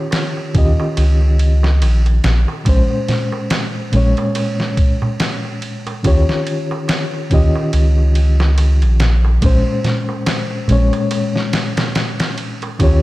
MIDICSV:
0, 0, Header, 1, 5, 480
1, 0, Start_track
1, 0, Tempo, 845070
1, 1512, Time_signature, 4, 2, 24, 8
1, 7396, End_track
2, 0, Start_track
2, 0, Title_t, "Reed electric piano"
2, 0, Program_c, 0, 4
2, 0, Control_c, 0, 64, 127
2, 0, Note_on_c, 0, 51, 77
2, 0, Note_on_c, 0, 61, 72
2, 0, Note_on_c, 0, 65, 77
2, 0, Note_on_c, 0, 67, 74
2, 0, Note_on_c, 0, 73, 90
2, 284, Note_off_c, 0, 51, 0
2, 288, Note_off_c, 0, 61, 0
2, 290, Note_off_c, 0, 65, 0
2, 294, Note_off_c, 0, 67, 0
2, 297, Note_off_c, 0, 73, 0
2, 306, Note_on_c, 0, 51, 72
2, 313, Note_on_c, 0, 61, 70
2, 319, Note_on_c, 0, 65, 67
2, 326, Note_on_c, 0, 67, 69
2, 331, Note_on_c, 0, 75, 79
2, 1485, Note_off_c, 0, 51, 0
2, 1488, Note_off_c, 0, 61, 0
2, 1491, Note_off_c, 0, 65, 0
2, 1495, Note_off_c, 0, 67, 0
2, 1497, Note_off_c, 0, 75, 0
2, 1503, Note_on_c, 0, 46, 85
2, 1511, Note_on_c, 0, 56, 74
2, 1519, Note_on_c, 0, 61, 75
2, 1520, Control_c, 0, 64, 0
2, 1528, Note_on_c, 0, 72, 92
2, 1606, Control_c, 0, 64, 127
2, 2203, Note_off_c, 0, 46, 0
2, 2207, Note_off_c, 0, 56, 0
2, 2211, Note_off_c, 0, 61, 0
2, 2216, Note_off_c, 0, 72, 0
2, 2226, Note_on_c, 0, 46, 86
2, 2233, Note_on_c, 0, 56, 81
2, 2243, Note_on_c, 0, 61, 80
2, 2251, Note_on_c, 0, 73, 91
2, 3405, Note_off_c, 0, 46, 0
2, 3408, Note_off_c, 0, 56, 0
2, 3413, Note_off_c, 0, 61, 0
2, 3417, Note_off_c, 0, 73, 0
2, 3425, Note_on_c, 0, 51, 78
2, 3431, Note_on_c, 0, 61, 73
2, 3438, Note_on_c, 0, 65, 72
2, 3441, Control_c, 0, 64, 0
2, 3444, Note_on_c, 0, 67, 73
2, 3450, Note_on_c, 0, 73, 92
2, 3548, Control_c, 0, 64, 127
2, 4124, Note_off_c, 0, 51, 0
2, 4127, Note_off_c, 0, 61, 0
2, 4131, Note_off_c, 0, 65, 0
2, 4134, Note_off_c, 0, 67, 0
2, 4137, Note_off_c, 0, 73, 0
2, 4144, Note_on_c, 0, 51, 70
2, 4150, Note_on_c, 0, 61, 72
2, 4158, Note_on_c, 0, 65, 68
2, 4163, Note_on_c, 0, 67, 67
2, 4170, Note_on_c, 0, 75, 83
2, 5324, Note_off_c, 0, 51, 0
2, 5327, Note_off_c, 0, 61, 0
2, 5331, Note_off_c, 0, 65, 0
2, 5333, Note_off_c, 0, 67, 0
2, 5337, Note_off_c, 0, 75, 0
2, 5345, Note_on_c, 0, 46, 89
2, 5353, Note_on_c, 0, 56, 75
2, 5359, Control_c, 0, 64, 0
2, 5362, Note_on_c, 0, 61, 79
2, 5371, Note_on_c, 0, 72, 91
2, 5456, Control_c, 0, 64, 127
2, 6044, Note_off_c, 0, 46, 0
2, 6048, Note_off_c, 0, 56, 0
2, 6053, Note_off_c, 0, 61, 0
2, 6057, Note_off_c, 0, 72, 0
2, 6065, Note_on_c, 0, 46, 94
2, 6074, Note_on_c, 0, 56, 81
2, 6082, Note_on_c, 0, 61, 83
2, 6091, Note_on_c, 0, 73, 97
2, 7244, Note_off_c, 0, 46, 0
2, 7249, Note_off_c, 0, 56, 0
2, 7253, Note_off_c, 0, 61, 0
2, 7257, Note_off_c, 0, 73, 0
2, 7263, Note_on_c, 0, 51, 84
2, 7271, Note_on_c, 0, 61, 75
2, 7277, Note_on_c, 0, 65, 75
2, 7278, Control_c, 0, 64, 0
2, 7283, Note_on_c, 0, 67, 76
2, 7289, Note_on_c, 0, 73, 91
2, 7389, Control_c, 0, 64, 127
2, 7396, Note_off_c, 0, 51, 0
2, 7396, Note_off_c, 0, 61, 0
2, 7396, Note_off_c, 0, 65, 0
2, 7396, Note_off_c, 0, 67, 0
2, 7396, Note_off_c, 0, 73, 0
2, 7396, End_track
3, 0, Start_track
3, 0, Title_t, "Sub bass"
3, 0, Program_c, 1, 38
3, 312, Note_on_c, 1, 39, 83
3, 434, Note_off_c, 1, 39, 0
3, 553, Note_on_c, 1, 37, 78
3, 1034, Note_on_c, 1, 34, 84
3, 1043, Note_off_c, 1, 37, 0
3, 1249, Note_off_c, 1, 34, 0
3, 1274, Note_on_c, 1, 34, 87
3, 1395, Note_off_c, 1, 34, 0
3, 1512, Note_on_c, 1, 34, 99
3, 1634, Note_off_c, 1, 34, 0
3, 2232, Note_on_c, 1, 34, 81
3, 2354, Note_off_c, 1, 34, 0
3, 3434, Note_on_c, 1, 39, 97
3, 3555, Note_off_c, 1, 39, 0
3, 4153, Note_on_c, 1, 39, 86
3, 4274, Note_off_c, 1, 39, 0
3, 4392, Note_on_c, 1, 37, 73
3, 5012, Note_on_c, 1, 34, 100
3, 5020, Note_off_c, 1, 37, 0
3, 5333, Note_off_c, 1, 34, 0
3, 5353, Note_on_c, 1, 34, 97
3, 5474, Note_off_c, 1, 34, 0
3, 6074, Note_on_c, 1, 34, 83
3, 6195, Note_off_c, 1, 34, 0
3, 7272, Note_on_c, 1, 39, 100
3, 7394, Note_off_c, 1, 39, 0
3, 7396, End_track
4, 0, Start_track
4, 0, Title_t, "Darbuka"
4, 63, Note_on_c, 9, 63, 59
4, 120, Note_off_c, 9, 63, 0
4, 210, Note_on_c, 9, 63, 41
4, 267, Note_off_c, 9, 63, 0
4, 309, Note_on_c, 9, 64, 74
4, 366, Note_off_c, 9, 64, 0
4, 452, Note_on_c, 9, 63, 79
4, 509, Note_off_c, 9, 63, 0
4, 550, Note_on_c, 9, 63, 55
4, 607, Note_off_c, 9, 63, 0
4, 686, Note_on_c, 9, 63, 37
4, 743, Note_off_c, 9, 63, 0
4, 927, Note_on_c, 9, 63, 75
4, 984, Note_off_c, 9, 63, 0
4, 1035, Note_on_c, 9, 63, 57
4, 1092, Note_off_c, 9, 63, 0
4, 1169, Note_on_c, 9, 63, 41
4, 1226, Note_off_c, 9, 63, 0
4, 1272, Note_on_c, 9, 64, 69
4, 1329, Note_off_c, 9, 64, 0
4, 1410, Note_on_c, 9, 63, 75
4, 1467, Note_off_c, 9, 63, 0
4, 1507, Note_on_c, 9, 63, 64
4, 1564, Note_off_c, 9, 63, 0
4, 1647, Note_on_c, 9, 63, 33
4, 1704, Note_off_c, 9, 63, 0
4, 1754, Note_on_c, 9, 64, 63
4, 1810, Note_off_c, 9, 64, 0
4, 1888, Note_on_c, 9, 63, 70
4, 1945, Note_off_c, 9, 63, 0
4, 1995, Note_on_c, 9, 63, 61
4, 2051, Note_off_c, 9, 63, 0
4, 2130, Note_on_c, 9, 63, 36
4, 2187, Note_off_c, 9, 63, 0
4, 2232, Note_on_c, 9, 64, 68
4, 2289, Note_off_c, 9, 64, 0
4, 2374, Note_on_c, 9, 63, 80
4, 2431, Note_off_c, 9, 63, 0
4, 2476, Note_on_c, 9, 63, 63
4, 2533, Note_off_c, 9, 63, 0
4, 2613, Note_on_c, 9, 63, 37
4, 2670, Note_off_c, 9, 63, 0
4, 2851, Note_on_c, 9, 63, 72
4, 2852, Note_on_c, 9, 64, 73
4, 2908, Note_off_c, 9, 63, 0
4, 2909, Note_off_c, 9, 64, 0
4, 2960, Note_on_c, 9, 63, 61
4, 3017, Note_off_c, 9, 63, 0
4, 3094, Note_on_c, 9, 63, 37
4, 3151, Note_off_c, 9, 63, 0
4, 3332, Note_on_c, 9, 63, 71
4, 3389, Note_off_c, 9, 63, 0
4, 3434, Note_on_c, 9, 63, 65
4, 3491, Note_off_c, 9, 63, 0
4, 3576, Note_on_c, 9, 63, 35
4, 3633, Note_off_c, 9, 63, 0
4, 3812, Note_on_c, 9, 63, 77
4, 3869, Note_off_c, 9, 63, 0
4, 3908, Note_on_c, 9, 63, 58
4, 3965, Note_off_c, 9, 63, 0
4, 4053, Note_on_c, 9, 63, 39
4, 4110, Note_off_c, 9, 63, 0
4, 4157, Note_on_c, 9, 64, 76
4, 4214, Note_off_c, 9, 64, 0
4, 4291, Note_on_c, 9, 63, 79
4, 4348, Note_off_c, 9, 63, 0
4, 4391, Note_on_c, 9, 63, 50
4, 4448, Note_off_c, 9, 63, 0
4, 4532, Note_on_c, 9, 63, 36
4, 4589, Note_off_c, 9, 63, 0
4, 4771, Note_on_c, 9, 63, 72
4, 4828, Note_off_c, 9, 63, 0
4, 4873, Note_on_c, 9, 63, 61
4, 4930, Note_off_c, 9, 63, 0
4, 5014, Note_on_c, 9, 63, 37
4, 5070, Note_off_c, 9, 63, 0
4, 5110, Note_on_c, 9, 64, 67
4, 5167, Note_off_c, 9, 64, 0
4, 5252, Note_on_c, 9, 63, 65
4, 5308, Note_off_c, 9, 63, 0
4, 5353, Note_on_c, 9, 63, 56
4, 5410, Note_off_c, 9, 63, 0
4, 5498, Note_on_c, 9, 63, 36
4, 5554, Note_off_c, 9, 63, 0
4, 5591, Note_on_c, 9, 64, 61
4, 5648, Note_off_c, 9, 64, 0
4, 5729, Note_on_c, 9, 63, 70
4, 5786, Note_off_c, 9, 63, 0
4, 5830, Note_on_c, 9, 63, 59
4, 5886, Note_off_c, 9, 63, 0
4, 5968, Note_on_c, 9, 63, 35
4, 6025, Note_off_c, 9, 63, 0
4, 6065, Note_on_c, 9, 64, 72
4, 6122, Note_off_c, 9, 64, 0
4, 6208, Note_on_c, 9, 63, 69
4, 6265, Note_off_c, 9, 63, 0
4, 6311, Note_on_c, 9, 63, 62
4, 6368, Note_off_c, 9, 63, 0
4, 6448, Note_on_c, 9, 63, 36
4, 6505, Note_off_c, 9, 63, 0
4, 6688, Note_on_c, 9, 64, 67
4, 6692, Note_on_c, 9, 63, 63
4, 6744, Note_off_c, 9, 64, 0
4, 6748, Note_off_c, 9, 63, 0
4, 6791, Note_on_c, 9, 63, 59
4, 6848, Note_off_c, 9, 63, 0
4, 6932, Note_on_c, 9, 63, 32
4, 6989, Note_off_c, 9, 63, 0
4, 7172, Note_on_c, 9, 63, 70
4, 7229, Note_off_c, 9, 63, 0
4, 7267, Note_on_c, 9, 63, 65
4, 7324, Note_off_c, 9, 63, 0
4, 7396, End_track
5, 0, Start_track
5, 0, Title_t, "Drums"
5, 70, Note_on_c, 9, 51, 83
5, 72, Note_on_c, 9, 38, 109
5, 126, Note_off_c, 9, 51, 0
5, 129, Note_off_c, 9, 38, 0
5, 310, Note_on_c, 9, 51, 66
5, 311, Note_on_c, 9, 36, 87
5, 367, Note_off_c, 9, 51, 0
5, 368, Note_off_c, 9, 36, 0
5, 552, Note_on_c, 9, 51, 81
5, 608, Note_off_c, 9, 51, 0
5, 792, Note_on_c, 9, 51, 66
5, 848, Note_off_c, 9, 51, 0
5, 933, Note_on_c, 9, 38, 54
5, 989, Note_off_c, 9, 38, 0
5, 1033, Note_on_c, 9, 51, 80
5, 1089, Note_off_c, 9, 51, 0
5, 1170, Note_on_c, 9, 51, 42
5, 1227, Note_off_c, 9, 51, 0
5, 1271, Note_on_c, 9, 51, 57
5, 1274, Note_on_c, 9, 38, 103
5, 1328, Note_off_c, 9, 51, 0
5, 1330, Note_off_c, 9, 38, 0
5, 1510, Note_on_c, 9, 51, 83
5, 1511, Note_on_c, 9, 36, 97
5, 1567, Note_off_c, 9, 51, 0
5, 1568, Note_off_c, 9, 36, 0
5, 1752, Note_on_c, 9, 51, 64
5, 1754, Note_on_c, 9, 38, 38
5, 1809, Note_off_c, 9, 51, 0
5, 1811, Note_off_c, 9, 38, 0
5, 1990, Note_on_c, 9, 51, 83
5, 1992, Note_on_c, 9, 38, 116
5, 2047, Note_off_c, 9, 51, 0
5, 2049, Note_off_c, 9, 38, 0
5, 2230, Note_on_c, 9, 51, 65
5, 2287, Note_off_c, 9, 51, 0
5, 2368, Note_on_c, 9, 51, 39
5, 2425, Note_off_c, 9, 51, 0
5, 2471, Note_on_c, 9, 51, 84
5, 2528, Note_off_c, 9, 51, 0
5, 2612, Note_on_c, 9, 38, 46
5, 2668, Note_off_c, 9, 38, 0
5, 2711, Note_on_c, 9, 36, 90
5, 2712, Note_on_c, 9, 51, 64
5, 2768, Note_off_c, 9, 36, 0
5, 2768, Note_off_c, 9, 51, 0
5, 2952, Note_on_c, 9, 51, 84
5, 2954, Note_on_c, 9, 38, 104
5, 3009, Note_off_c, 9, 51, 0
5, 3011, Note_off_c, 9, 38, 0
5, 3192, Note_on_c, 9, 51, 66
5, 3249, Note_off_c, 9, 51, 0
5, 3332, Note_on_c, 9, 51, 42
5, 3389, Note_off_c, 9, 51, 0
5, 3432, Note_on_c, 9, 36, 102
5, 3433, Note_on_c, 9, 51, 83
5, 3489, Note_off_c, 9, 36, 0
5, 3490, Note_off_c, 9, 51, 0
5, 3574, Note_on_c, 9, 38, 49
5, 3630, Note_off_c, 9, 38, 0
5, 3673, Note_on_c, 9, 51, 62
5, 3730, Note_off_c, 9, 51, 0
5, 3912, Note_on_c, 9, 51, 82
5, 3914, Note_on_c, 9, 38, 115
5, 3969, Note_off_c, 9, 51, 0
5, 3971, Note_off_c, 9, 38, 0
5, 4151, Note_on_c, 9, 36, 94
5, 4151, Note_on_c, 9, 51, 65
5, 4208, Note_off_c, 9, 36, 0
5, 4208, Note_off_c, 9, 51, 0
5, 4390, Note_on_c, 9, 51, 81
5, 4447, Note_off_c, 9, 51, 0
5, 4631, Note_on_c, 9, 51, 66
5, 4687, Note_off_c, 9, 51, 0
5, 4771, Note_on_c, 9, 38, 53
5, 4828, Note_off_c, 9, 38, 0
5, 4871, Note_on_c, 9, 51, 85
5, 4928, Note_off_c, 9, 51, 0
5, 5009, Note_on_c, 9, 51, 45
5, 5066, Note_off_c, 9, 51, 0
5, 5110, Note_on_c, 9, 51, 58
5, 5112, Note_on_c, 9, 38, 99
5, 5167, Note_off_c, 9, 51, 0
5, 5169, Note_off_c, 9, 38, 0
5, 5351, Note_on_c, 9, 36, 105
5, 5351, Note_on_c, 9, 51, 88
5, 5407, Note_off_c, 9, 51, 0
5, 5408, Note_off_c, 9, 36, 0
5, 5591, Note_on_c, 9, 51, 61
5, 5594, Note_on_c, 9, 38, 42
5, 5648, Note_off_c, 9, 51, 0
5, 5651, Note_off_c, 9, 38, 0
5, 5830, Note_on_c, 9, 51, 86
5, 5832, Note_on_c, 9, 38, 108
5, 5887, Note_off_c, 9, 51, 0
5, 5889, Note_off_c, 9, 38, 0
5, 6071, Note_on_c, 9, 51, 65
5, 6128, Note_off_c, 9, 51, 0
5, 6208, Note_on_c, 9, 51, 42
5, 6265, Note_off_c, 9, 51, 0
5, 6309, Note_on_c, 9, 51, 86
5, 6366, Note_off_c, 9, 51, 0
5, 6450, Note_on_c, 9, 38, 42
5, 6507, Note_off_c, 9, 38, 0
5, 6549, Note_on_c, 9, 51, 79
5, 6551, Note_on_c, 9, 38, 102
5, 6606, Note_off_c, 9, 51, 0
5, 6608, Note_off_c, 9, 38, 0
5, 6686, Note_on_c, 9, 51, 74
5, 6689, Note_on_c, 9, 38, 103
5, 6743, Note_off_c, 9, 51, 0
5, 6746, Note_off_c, 9, 38, 0
5, 6789, Note_on_c, 9, 51, 68
5, 6792, Note_on_c, 9, 38, 100
5, 6846, Note_off_c, 9, 51, 0
5, 6848, Note_off_c, 9, 38, 0
5, 6928, Note_on_c, 9, 51, 76
5, 6930, Note_on_c, 9, 38, 98
5, 6984, Note_off_c, 9, 51, 0
5, 6987, Note_off_c, 9, 38, 0
5, 7030, Note_on_c, 9, 51, 64
5, 7086, Note_off_c, 9, 51, 0
5, 7168, Note_on_c, 9, 51, 42
5, 7225, Note_off_c, 9, 51, 0
5, 7269, Note_on_c, 9, 51, 80
5, 7270, Note_on_c, 9, 36, 99
5, 7326, Note_off_c, 9, 51, 0
5, 7327, Note_off_c, 9, 36, 0
5, 7396, End_track
0, 0, End_of_file